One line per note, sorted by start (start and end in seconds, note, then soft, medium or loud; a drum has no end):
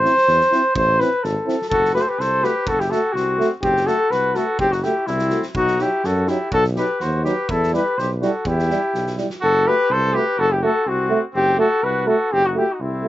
0.00 0.13 E4 medium
0.00 0.71 C5 loud
0.04 0.14 C4 medium
0.04 snare soft
0.17 snare soft
0.28 0.41 E2 loud
0.28 snare soft
0.41 snare soft
0.52 0.62 C4 medium
0.52 0.61 E4 medium
0.52 snare soft
0.75 1.02 A1 loud
0.75 1.01 C5 loud
0.75 kick medium
1.00 1.09 C4 medium
1.00 1.09 E4 medium
1.00 1.25 B4 loud
1.00 snare soft
1.23 1.37 G#1 loud
1.23 1.69 A4 medium
1.23 snare soft
1.46 1.56 C4 medium
1.46 1.56 E4 medium
1.46 snare soft
1.62 snare soft
1.69 1.98 F#1 loud
1.69 1.94 F#4 medium
1.69 1.92 A4 loud
1.69 kick medium
1.85 snare soft
1.94 2.04 A3 medium
1.94 2.04 F#4 medium
1.94 2.04 G4 medium
1.94 2.02 B4 loud
1.94 snare soft
2.01 2.09 A4 medium
2.01 2.10 C5 medium
2.08 2.21 G4 medium
2.08 2.22 B4 medium
2.19 2.45 C2 medium
2.19 2.45 A4 medium
2.19 2.45 C5 loud
2.19 snare soft
2.41 2.52 A3 medium
2.41 2.51 F#4 medium
2.41 2.71 G4 medium
2.41 2.69 B4 loud
2.41 snare soft
2.66 2.93 F#1 medium
2.66 2.82 F#4 medium
2.66 2.81 A4 loud
2.66 kick medium
2.79 2.93 E4 medium
2.79 2.92 G4 loud
2.79 snare soft
2.90 3.01 A3 medium
2.90 3.00 F#4 medium
2.90 3.18 F#4 medium
2.90 3.14 A4 loud
2.90 snare soft
3.13 3.41 C2 medium
3.13 3.51 F#4 loud
3.13 snare soft
3.17 3.53 C4 medium
3.39 3.48 A3 medium
3.39 3.49 F#4 medium
3.39 snare soft
3.61 3.88 F#1 loud
3.61 3.88 C4 medium
3.61 3.88 G4 loud
3.61 kick medium
3.76 snare soft
3.85 3.97 A3 medium
3.85 3.95 F#4 medium
3.85 4.11 F#4 medium
3.85 4.12 A4 loud
3.85 snare soft
4.10 4.37 C2 medium
4.10 4.35 F#4 medium
4.10 4.37 B4 loud
4.10 snare soft
4.33 4.45 A3 medium
4.33 4.43 F#4 medium
4.33 4.59 F#4 medium
4.33 4.59 A4 medium
4.33 snare soft
4.59 4.86 F#1 medium
4.59 4.74 C4 medium
4.59 4.73 G4 loud
4.59 kick medium
4.72 4.84 D#4 medium
4.72 4.84 F#4 medium
4.72 snare soft
4.83 4.93 A3 medium
4.83 5.12 E4 medium
4.83 4.93 F#4 soft
4.83 5.08 G4 loud
4.83 snare soft
5.06 5.34 C2 loud
5.06 5.46 C4 medium
5.06 5.44 E4 medium
5.06 snare soft
5.19 snare soft
5.30 5.41 A3 medium
5.30 5.41 F#4 medium
5.30 snare soft
5.42 snare soft
5.55 5.82 B1 medium
5.55 5.83 D#4 medium
5.55 5.82 F#4 loud
5.55 kick medium
5.67 snare soft
5.79 5.90 F#3 medium
5.79 5.89 D#4 medium
5.79 6.06 E4 medium
5.79 6.07 G4 loud
5.79 snare soft
6.04 6.31 F#2 loud
6.04 6.30 F#4 medium
6.04 6.30 A4 medium
6.04 snare soft
6.27 6.38 F#3 medium
6.27 6.37 D#4 medium
6.27 6.51 E4 medium
6.27 6.53 G4 medium
6.27 snare soft
6.52 6.79 B1 loud
6.52 6.63 F#4 medium
6.52 6.64 A4 loud
6.52 kick medium
6.64 snare soft
6.74 6.86 F#3 medium
6.74 6.84 D#4 medium
6.74 7.01 G4 medium
6.74 7.03 B4 loud
6.74 snare soft
7.00 7.28 D#2 medium
7.00 7.24 F#4 medium
7.00 7.25 C5 medium
7.00 snare soft
7.23 7.34 F#3 medium
7.23 7.33 D#4 medium
7.23 7.51 G4 medium
7.23 7.52 B4 medium
7.23 snare soft
7.49 7.76 E2 medium
7.49 7.73 E4 medium
7.49 7.74 A4 loud
7.49 kick medium
7.63 snare soft
7.73 7.83 G3 medium
7.73 7.82 E4 medium
7.73 7.98 G4 medium
7.73 7.99 B4 loud
7.73 snare soft
7.97 8.24 B1 medium
7.97 8.11 G4 medium
7.97 8.10 C5 medium
7.97 snare soft
8.21 8.31 G3 medium
8.21 8.31 E4 medium
8.21 8.49 F#4 medium
8.21 8.48 A4 medium
8.21 snare soft
8.45 8.72 E2 loud
8.45 9.19 E4 medium
8.45 9.18 G4 loud
8.45 kick medium
8.59 snare soft
8.70 8.80 G3 medium
8.70 8.80 E4 medium
8.70 snare soft
8.94 9.20 B1 medium
8.94 snare soft
9.07 snare soft
9.17 9.27 G3 medium
9.17 9.28 E4 soft
9.17 snare soft
9.30 snare soft
9.41 9.68 F#1 loud
9.41 9.68 F#4 loud
9.41 9.69 A4 loud
9.66 9.75 A3 medium
9.66 9.75 F#4 medium
9.66 9.93 G4 medium
9.66 9.94 B4 loud
9.89 10.16 C2 loud
9.89 10.15 A4 loud
9.89 10.18 C5 loud
10.13 10.23 A3 medium
10.13 10.23 F#4 medium
10.13 10.40 G4 medium
10.13 10.41 B4 loud
10.38 10.65 F#1 loud
10.38 10.52 F#4 medium
10.38 10.53 A4 loud
10.50 10.61 E4 medium
10.50 10.63 G4 medium
10.61 10.72 A3 medium
10.61 10.71 F#4 medium
10.61 10.87 F#4 medium
10.61 10.90 A4 loud
10.86 11.13 C2 medium
10.86 11.23 C4 medium
10.86 11.24 F#4 loud
11.09 11.19 A3 medium
11.09 11.19 F#4 medium
11.33 11.61 F#1 loud
11.33 11.57 C4 loud
11.33 11.58 G4 loud
11.57 11.67 A3 medium
11.57 11.68 F#4 medium
11.57 11.83 F#4 medium
11.57 11.85 A4 loud
11.83 12.09 C2 medium
11.83 12.07 F#4 medium
11.83 12.09 B4 medium
12.05 12.16 A3 medium
12.05 12.15 F#4 medium
12.05 12.33 F#4 medium
12.05 12.34 A4 loud
12.32 12.58 F#1 loud
12.32 12.46 C4 loud
12.32 12.47 G4 loud
12.45 12.59 D#4 medium
12.45 12.59 F#4 medium
12.54 12.64 A3 medium
12.54 12.74 E4 medium
12.54 12.66 F#4 medium
12.54 12.74 G4 loud
12.72 12.82 D#4 medium
12.72 12.82 F#4 soft
12.80 13.06 C2 medium
12.80 13.08 C4 medium
12.80 13.08 E4 medium
13.03 13.08 A3 medium
13.03 13.08 F#4 medium